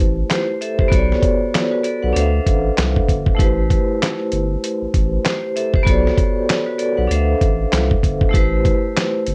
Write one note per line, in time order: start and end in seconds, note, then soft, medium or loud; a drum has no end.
0.00 0.23 A1 loud
0.00 0.86 A3 medium
0.00 0.87 E4 medium
0.00 0.26 G4 medium
0.00 0.27 B4 medium
0.00 0.28 C5 medium
0.30 0.60 G4 medium
0.30 0.60 C5 medium
0.30 snare loud
0.30 clap medium
0.30 closed hi-hat medium
0.61 0.79 A4 medium
0.61 0.79 E5 medium
0.61 closed hi-hat medium
0.79 1.10 G4 medium
0.79 1.10 C5 medium
0.79 kick medium
0.88 1.16 B1 loud
0.88 2.11 B3 medium
0.88 1.21 F#4 medium
0.88 kick loud
0.92 1.22 A4 medium
0.92 1.23 C#5 medium
0.92 1.24 D5 medium
0.92 closed hi-hat medium
1.12 snare soft
1.23 kick loud
1.23 closed hi-hat medium
1.55 snare loud
1.55 clap medium
1.55 closed hi-hat medium
1.71 1.84 F#4 medium
1.71 1.84 B4 medium
1.84 2.02 A4 medium
1.84 2.02 D5 medium
1.84 closed hi-hat medium
2.03 2.13 B1 medium
2.03 2.33 B4 medium
2.03 2.32 F#5 medium
2.13 2.40 D2 loud
2.13 3.35 D4 medium
2.13 3.36 A4 medium
2.13 3.37 C5 medium
2.13 closed hi-hat loud
2.19 3.38 E5 medium
2.19 3.39 F5 medium
2.47 2.71 A1 medium
2.47 kick medium
2.47 closed hi-hat medium
2.78 3.02 C2 loud
2.78 snare loud
2.78 clap medium
2.78 closed hi-hat medium
2.96 kick medium
3.09 3.33 G1 medium
3.09 kick medium
3.09 closed hi-hat medium
3.26 kick medium
3.35 5.80 A3 medium
3.35 5.81 E4 medium
3.35 5.21 G4 medium
3.39 3.78 A1 loud
3.39 5.22 B4 medium
3.39 5.23 C5 medium
3.39 kick loud
3.39 closed hi-hat loud
3.70 kick loud
3.70 closed hi-hat medium
4.02 snare loud
4.02 clap medium
4.02 closed hi-hat medium
4.32 4.56 G1 loud
4.32 closed hi-hat medium
4.64 closed hi-hat loud
4.82 4.87 A1 soft
4.94 5.18 A1 loud
4.94 kick medium
4.94 closed hi-hat medium
5.25 5.55 G4 medium
5.25 5.54 C5 medium
5.25 snare loud
5.25 clap medium
5.25 closed hi-hat medium
5.56 5.74 A4 medium
5.56 5.73 E5 medium
5.56 closed hi-hat medium
5.74 6.05 G4 medium
5.74 6.04 C5 medium
5.74 kick loud
5.83 6.11 B1 loud
5.83 7.06 B3 medium
5.83 6.16 F#4 medium
5.83 6.17 A4 medium
5.83 kick loud
5.87 6.18 C#5 medium
5.87 6.19 D5 medium
5.87 closed hi-hat medium
6.07 snare soft
6.18 kick loud
6.18 closed hi-hat medium
6.49 snare loud
6.49 clap medium
6.49 closed hi-hat loud
6.66 6.79 F#4 medium
6.66 6.78 B4 medium
6.78 6.97 A4 medium
6.78 6.96 D5 medium
6.78 closed hi-hat medium
6.97 7.08 B1 medium
6.97 7.27 B4 medium
6.97 7.27 F#5 medium
7.07 7.35 D2 loud
7.07 8.30 D4 medium
7.07 8.31 A4 medium
7.07 8.32 C5 medium
7.07 closed hi-hat loud
7.13 8.33 E5 medium
7.13 8.34 F5 medium
7.41 7.66 A1 medium
7.41 kick medium
7.41 closed hi-hat medium
7.72 7.97 C2 loud
7.72 snare loud
7.72 clap medium
7.72 closed hi-hat medium
7.91 kick medium
8.03 8.28 G1 medium
8.03 kick medium
8.03 closed hi-hat medium
8.21 kick medium
8.29 9.35 A3 medium
8.29 9.35 E4 medium
8.29 9.35 G4 medium
8.34 8.73 A1 loud
8.34 9.35 B4 medium
8.34 9.35 C5 medium
8.34 kick loud
8.34 closed hi-hat loud
8.65 kick loud
8.65 closed hi-hat medium
8.97 snare loud
8.97 clap medium
8.97 closed hi-hat loud
9.27 9.35 G1 loud
9.27 closed hi-hat medium